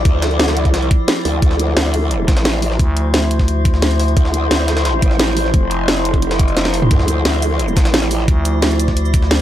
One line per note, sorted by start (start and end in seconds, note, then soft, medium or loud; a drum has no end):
0.00 9.41 F3 medium
0.00 9.41 E4 medium
0.00 1.40 D5 medium
0.05 0.65 D2 loud
0.05 kick loud
0.05 closed hi-hat medium
0.22 snare loud
0.22 closed hi-hat medium
0.22 closed hi-hat loud
0.31 closed hi-hat soft
0.40 snare loud
0.40 closed hi-hat medium
0.48 snare loud
0.48 closed hi-hat medium
0.57 closed hi-hat soft
0.57 closed hi-hat medium
0.65 0.90 C#2 loud
0.65 kick medium
0.65 closed hi-hat medium
0.74 snare loud
0.74 closed hi-hat medium
0.82 closed hi-hat soft
0.91 kick loud
0.91 closed hi-hat medium
1.08 snare loud
1.08 closed hi-hat medium
1.17 closed hi-hat soft
1.25 1.41 D2 loud
1.25 closed hi-hat medium
1.25 open hi-hat medium
1.42 1.75 D2 loud
1.42 6.89 C5 medium
1.42 kick loud
1.42 closed hi-hat medium
1.51 snare medium
1.59 closed hi-hat medium
1.77 2.27 D2 loud
1.77 snare loud
1.77 closed hi-hat medium
1.94 closed hi-hat medium
1.94 open hi-hat medium
2.11 closed hi-hat medium
2.28 2.78 A1 loud
2.28 kick loud
2.28 snare loud
2.28 closed hi-hat medium
2.37 snare loud
2.37 closed hi-hat medium
2.45 snare loud
2.45 closed hi-hat medium
2.54 snare soft
2.62 closed hi-hat medium
2.62 open hi-hat medium
2.71 snare soft
2.79 4.15 D2 loud
2.79 kick loud
2.79 closed hi-hat medium
2.79 closed hi-hat loud
2.97 closed hi-hat medium
3.14 snare loud
3.14 closed hi-hat medium
3.22 closed hi-hat soft
3.31 closed hi-hat medium
3.39 kick medium
3.39 snare soft
3.48 closed hi-hat medium
3.65 kick loud
3.65 closed hi-hat medium
3.74 snare soft
3.82 snare loud
3.82 closed hi-hat medium
3.91 closed hi-hat medium
4.00 snare soft
4.00 open hi-hat medium
4.08 closed hi-hat medium
4.17 4.50 D2 loud
4.17 kick loud
4.17 closed hi-hat medium
4.25 snare medium
4.34 closed hi-hat medium
4.34 closed hi-hat loud
4.51 5.01 D2 loud
4.51 snare loud
4.51 closed hi-hat medium
4.68 snare loud
4.68 closed hi-hat medium
4.77 snare loud
4.77 closed hi-hat medium
4.85 snare loud
4.85 closed hi-hat medium
5.02 5.52 A1 medium
5.02 kick loud
5.02 closed hi-hat medium
5.11 snare soft
5.19 snare loud
5.19 closed hi-hat medium
5.28 snare soft
5.37 closed hi-hat medium
5.37 open hi-hat medium
5.45 snare soft
5.54 6.90 F1 loud
5.54 kick loud
5.54 closed hi-hat medium
5.54 closed hi-hat loud
5.71 closed hi-hat medium
5.71 closed hi-hat loud
5.88 snare loud
5.88 closed hi-hat medium
5.97 closed hi-hat soft
6.05 closed hi-hat medium
6.14 kick medium
6.14 closed hi-hat soft
6.22 closed hi-hat medium
6.31 snare loud
6.31 closed hi-hat medium
6.39 kick loud
6.39 closed hi-hat loud
6.39 closed hi-hat soft
6.48 closed hi-hat medium
6.57 snare medium
6.57 snare loud
6.57 closed hi-hat medium
6.65 snare medium
6.65 closed hi-hat soft
6.74 closed hi-hat medium
6.74 open hi-hat medium
6.82 mid tom medium
6.91 7.24 D2 medium
6.91 9.41 D5 medium
6.91 kick loud
6.91 closed hi-hat medium
7.00 snare medium
7.08 closed hi-hat loud
7.08 closed hi-hat medium
7.08 shaker medium
7.25 7.75 D2 loud
7.25 snare loud
7.25 closed hi-hat medium
7.34 shaker soft
7.42 closed hi-hat medium
7.42 open hi-hat medium
7.42 shaker medium
7.59 closed hi-hat medium
7.68 shaker soft
7.77 8.27 A1 medium
7.77 kick loud
7.77 snare loud
7.77 closed hi-hat medium
7.77 closed hi-hat loud
7.77 shaker medium
7.85 snare loud
7.85 closed hi-hat medium
7.94 snare loud
7.94 closed hi-hat medium
8.02 snare soft
8.02 shaker soft
8.11 closed hi-hat medium
8.11 open hi-hat medium
8.11 shaker medium
8.20 snare soft
8.28 9.41 D2 loud
8.28 kick loud
8.28 closed hi-hat medium
8.28 closed hi-hat loud
8.45 closed hi-hat loud
8.45 closed hi-hat medium
8.45 shaker medium
8.62 snare loud
8.62 closed hi-hat medium
8.71 closed hi-hat soft
8.71 shaker soft
8.80 closed hi-hat medium
8.80 shaker medium
8.88 kick medium
8.88 snare soft
8.97 closed hi-hat medium
9.05 shaker soft
9.14 kick loud
9.14 closed hi-hat loud
9.14 closed hi-hat medium
9.14 shaker medium
9.22 snare soft
9.31 snare loud
9.31 closed hi-hat medium